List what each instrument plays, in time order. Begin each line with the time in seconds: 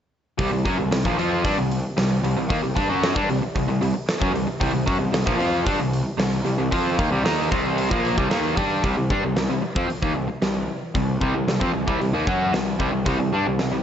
0.38 picked electric bass C2, distorted electric guitar C3 G3, kick, open hi-hat
0.51 picked electric bass C2, distorted electric guitar C3 G3
0.65 picked electric bass F#2, distorted electric guitar F#3 C#4, kick, open hi-hat
0.78 picked electric bass C2, distorted electric guitar C3 G3
0.91 picked electric bass C2, distorted electric guitar C3 G3, snare, open hi-hat
1.05 picked electric bass A#1, distorted electric guitar A#2 F3, kick
1.18 picked electric bass F2, distorted electric guitar F3 C4 F4, open hi-hat
1.44 picked electric bass G2, distorted electric guitar G3 D4, kick, open hi-hat
1.57 picked electric bass C2, distorted electric guitar C3 G3
1.71 open hi-hat
1.97 picked electric bass C2, distorted electric guitar C3 G3, snare, open hi-hat
2.24 picked electric bass C2, distorted electric guitar C3 G3, open hi-hat
2.37 picked electric bass C2, distorted electric guitar C3 G3
2.49 picked electric bass D#2, distorted electric guitar D#3 A#3, kick, open hi-hat
2.62 picked electric bass C2, distorted electric guitar C3 G3
2.75 picked electric bass G2, distorted electric guitar G3 D4, kick, open hi-hat
2.89 picked electric bass F#2, distorted electric guitar F#3 C#4 F#4
3.03 snare, open hi-hat
3.16 picked electric bass G2, distorted electric guitar G3 D4, kick
3.29 picked electric bass C2, distorted electric guitar C3 G3, open hi-hat
3.43 muted distorted electric guitar stroke, muted picked electric bass stroke
3.55 picked electric bass C2, distorted electric guitar C3 G3, kick, open hi-hat
3.68 picked electric bass C2, distorted electric guitar C3 G3
3.82 picked electric bass C2, distorted electric guitar C3 G3, open hi-hat
3.94 muted distorted electric guitar stroke, muted picked electric bass stroke
4.09 snare, open hi-hat
4.20 picked electric bass F#2, distorted electric guitar F#3 C#4, kick
4.33 picked electric bass C2, distorted electric guitar C3 G3, open hi-hat
4.47 muted distorted electric guitar stroke, muted picked electric bass stroke
4.60 picked electric bass C2, distorted electric guitar C3 G3, kick, open hi-hat
4.73 picked electric bass C2, distorted electric guitar C3 G3
4.86 picked electric bass F#2, distorted electric guitar F#3 C#4, kick, open hi-hat
4.99 picked electric bass C2, distorted electric guitar C3 G3
5.12 picked electric bass C2, distorted electric guitar C3 G3, snare, open hi-hat
5.26 picked electric bass A#1, distorted electric guitar A#2 F3, kick
5.38 picked electric bass F2, distorted electric guitar F3 C4 F4, open hi-hat
5.65 picked electric bass G2, distorted electric guitar G3 D4, kick, open hi-hat
5.79 picked electric bass C2, distorted electric guitar C3 G3
5.93 open hi-hat
6.18 picked electric bass C2, distorted electric guitar C3 G3, snare, open hi-hat
6.45 picked electric bass C2, distorted electric guitar C3 G3, open hi-hat
6.58 picked electric bass C2, distorted electric guitar C3 G3
6.71 picked electric bass F2, distorted electric guitar F3 C4 F4, kick, open hi-hat
6.98 picked electric bass D#2, distorted electric guitar D#3 A#3, kick, open hi-hat
7.11 picked electric bass C2, distorted electric guitar C3 G3
7.24 picked electric bass D#2, distorted electric guitar D#3 A#3 D#4, snare, open hi-hat
7.51 picked electric bass C2, distorted electric guitar C3 G3 C4, kick, open hi-hat
7.78 open hi-hat
7.91 picked electric bass A#1, distorted electric guitar A#2 F3 A#3, kick
8.05 open hi-hat
8.17 picked electric bass C2, distorted electric guitar C3 G3, kick
8.30 picked electric bass D#2, distorted electric guitar D#3 A#3 D#4, snare, open hi-hat
8.56 picked electric bass G2, distorted electric guitar G3 D4 G4, kick, open hi-hat
8.83 picked electric bass C2, distorted electric guitar C3 G3, kick, open hi-hat
8.97 picked electric bass C2, distorted electric guitar C3 G3
9.10 picked electric bass G2, distorted electric guitar G3 D4, kick
9.23 picked electric bass C2, distorted electric guitar C3 G3
9.36 picked electric bass C2, distorted electric guitar C3 G3, snare, open hi-hat
9.50 picked electric bass C2, distorted electric guitar C3 G3
9.62 muted distorted electric guitar stroke, muted picked electric bass stroke
9.75 picked electric bass F2, distorted electric guitar F3 C4, kick
9.89 muted picked electric bass stroke, muted distorted electric guitar stroke, open hi-hat
10.02 picked electric bass D#2, distorted electric guitar D#3 A#3, kick
10.15 picked electric bass C2, distorted electric guitar C3 G3
10.29 muted distorted electric guitar stroke, muted picked electric bass stroke
10.42 picked electric bass C2, distorted electric guitar C3 G3, snare, open hi-hat
10.95 picked electric bass C2, distorted electric guitar C3 G3, kick, open hi-hat
11.21 picked electric bass C2, distorted electric guitar C3 G3, kick
11.35 picked electric bass C2, distorted electric guitar C3 G3
11.48 picked electric bass C2, distorted electric guitar C3 G3, snare, open hi-hat
11.60 picked electric bass F2, distorted electric guitar F3 C4, kick
11.73 picked electric bass C2, distorted electric guitar C3 G3
11.87 picked electric bass C2, distorted electric guitar C3 G3, kick
12.00 picked electric bass C2, distorted electric guitar C3 G3, open hi-hat
12.13 picked electric bass D#2, distorted electric guitar D#3 A#3
12.27 picked electric bass F#2, distorted electric guitar F#3 C#4 F#4, kick
12.52 picked electric bass C2, distorted electric guitar C3 G3, snare, open hi-hat
12.79 picked electric bass C2, distorted electric guitar C3 G3, kick
12.93 picked electric bass C2, distorted electric guitar C3 G3
13.05 picked electric bass C2, distorted electric guitar C3 G3, kick, open hi-hat
13.19 picked electric bass C2, distorted electric guitar C3 G3
13.33 picked electric bass G2, distorted electric guitar G3 D4
13.46 picked electric bass C2, distorted electric guitar C3 G3
13.59 picked electric bass C2, distorted electric guitar C3 G3, snare, open hi-hat
13.72 picked electric bass C2, distorted electric guitar C3 G3